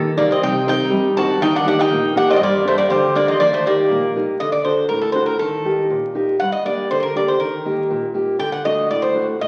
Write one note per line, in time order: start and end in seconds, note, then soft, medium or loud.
0.00 0.14 A#1 medium
0.00 0.14 D#3 medium
0.00 0.40 A#3 medium
0.00 0.13 A4 medium
0.17 0.39 C2 medium
0.17 0.29 A#3 medium
0.17 0.37 D#4 soft
0.17 0.37 G4 soft
0.17 0.37 A#4 medium
0.17 0.29 D5 medium
0.31 0.42 C4 medium
0.31 0.42 D#5 medium
0.42 0.77 C2 medium
0.42 0.90 C3 medium
0.42 0.66 D#4 medium
0.42 0.66 G5 medium
0.66 1.06 C4 soft
0.66 1.06 D#4 soft
0.66 1.14 D#4 medium
0.66 1.07 A#4 soft
0.66 1.14 G5 loud
0.90 1.26 G2 medium
0.90 1.39 G3 medium
1.16 1.36 C4 soft
1.16 1.36 D#4 soft
1.16 1.41 F#4 medium
1.16 1.36 A#4 medium
1.16 1.40 A5 loud
1.40 1.76 D#2 medium
1.40 1.89 D#3 medium
1.40 1.54 D#4 medium
1.40 1.55 G5 medium
1.55 1.66 D4 medium
1.55 1.67 F#5 medium
1.65 1.89 A#3 soft
1.65 1.79 D4 medium
1.65 2.06 D#4 soft
1.65 2.06 G4 soft
1.65 1.80 F#5 loud
1.79 2.14 D#4 medium
1.79 2.14 G5 loud
1.90 2.26 A#1 medium
1.90 2.14 A#3 medium
2.15 2.35 A#3 soft
2.15 2.28 D4 medium
2.15 2.36 D#4 soft
2.15 2.36 G4 medium
2.15 2.28 F#5 medium
2.30 2.35 A#3 medium
2.30 2.32 C4 medium
2.30 2.35 D5 medium
2.30 2.33 D#5 medium
2.36 2.88 G3 medium
2.36 2.42 C4 medium
2.36 2.42 D#5 medium
2.41 2.76 G2 medium
2.41 2.65 A#3 medium
2.41 2.65 D5 medium
2.64 2.78 A3 medium
2.64 3.05 D4 soft
2.64 3.05 G4 soft
2.64 3.05 A#4 soft
2.64 2.77 C5 medium
2.78 2.90 A#3 medium
2.78 2.90 D5 medium
2.90 3.26 D2 medium
2.90 3.39 D3 medium
2.90 3.14 G3 medium
2.90 3.16 C5 medium
3.15 3.27 A#3 medium
3.15 3.36 D4 soft
3.15 3.36 G4 soft
3.15 3.36 A#4 soft
3.15 3.28 D5 medium
3.28 3.40 C4 medium
3.28 3.40 D#5 medium
3.40 3.75 D#2 medium
3.40 3.89 D#3 medium
3.40 3.52 A#3 medium
3.40 3.52 D5 medium
3.53 3.64 A3 medium
3.53 3.66 C5 medium
3.66 4.12 A#3 medium
3.66 4.06 D#4 soft
3.66 4.06 G4 soft
3.66 4.06 A#4 soft
3.66 4.13 D5 medium
3.89 4.25 A#1 medium
3.89 4.39 A#3 medium
4.16 4.35 D#4 soft
4.16 4.36 G4 soft
4.16 4.36 A#4 soft
4.40 4.89 D3 medium
4.40 4.52 D#5 medium
4.52 4.64 D5 medium
4.65 5.05 D4 soft
4.65 5.05 F#4 soft
4.65 5.06 A4 soft
4.65 4.88 C5 medium
4.89 5.38 A2 medium
4.89 5.01 A#4 medium
5.01 5.12 A4 medium
5.12 5.35 D4 soft
5.12 5.35 F#4 soft
5.12 5.25 C5 medium
5.17 5.36 A4 soft
5.26 5.38 A#4 medium
5.39 5.89 D#3 medium
5.39 5.86 A4 medium
5.65 6.05 D#4 soft
5.65 6.05 G4 soft
5.65 6.06 A#4 soft
5.90 6.38 A#2 medium
6.15 6.35 D#4 soft
6.15 6.35 G4 soft
6.15 6.36 A#4 soft
6.40 6.89 G2 medium
6.40 6.52 F#5 medium
6.52 6.64 D#5 medium
6.65 7.05 A#3 soft
6.65 7.05 D4 soft
6.65 7.05 G4 soft
6.65 6.89 D5 medium
6.91 7.39 D3 medium
6.91 6.99 C5 medium
7.00 7.14 A#4 medium
7.00 7.03 C5 soft
7.15 7.35 A#3 soft
7.15 7.35 D4 soft
7.15 7.35 G4 soft
7.15 7.27 D5 medium
7.28 7.41 C5 medium
7.40 7.89 D#3 medium
7.40 7.86 A#4 medium
7.65 8.05 A#3 soft
7.65 8.05 D#4 soft
7.65 8.06 G4 soft
7.90 8.39 A#2 medium
8.14 8.35 A#3 soft
8.14 8.35 D#4 soft
8.14 8.35 G4 soft
8.39 8.88 D3 medium
8.39 8.51 G5 medium
8.52 8.65 F#5 medium
8.65 9.05 A3 soft
8.65 9.05 D4 soft
8.65 9.06 F#4 soft
8.65 8.90 D#5 medium
8.89 9.38 A2 medium
8.89 9.03 D5 medium
9.02 9.26 C5 medium
9.14 9.34 A3 soft
9.14 9.35 D4 soft
9.14 9.35 F#4 soft
9.39 9.48 A#2 medium
9.39 9.48 D#5 medium